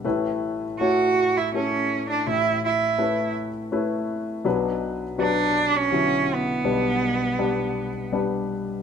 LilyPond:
<<
  \new Staff \with { instrumentName = "Cello" } { \time 3/4 \key a \mixolydian \tempo 4 = 82 r4 fis'8. e'16 cis'8. d'16 | e'8 e'4 r4. | r4 d'8. cis'8. b8~ | b2 r4 | }
  \new Staff \with { instrumentName = "Grand piano" } { \time 3/4 \key a \mixolydian <a cis' e' b'>4 <a cis' e' cis''>8 r8 <a cis' e' a'>4~ | <a cis' e' a'>8 r8 <a cis' e' b'>8 r8 <a cis' e' b'>4 | <fis b d' b'>4 <fis b d' b'>8 r8 <d fis b e'>4 | <g b d' b'>4 <g b d' b'>8 r8 <g b d' b'>4 | }
  \new Staff \with { instrumentName = "Grand piano" } { \clef bass \time 3/4 \key a \mixolydian <a,, a,>2. | <a,, a,>2. | <b,, b,>2. | <b,, b,>2. | }
>>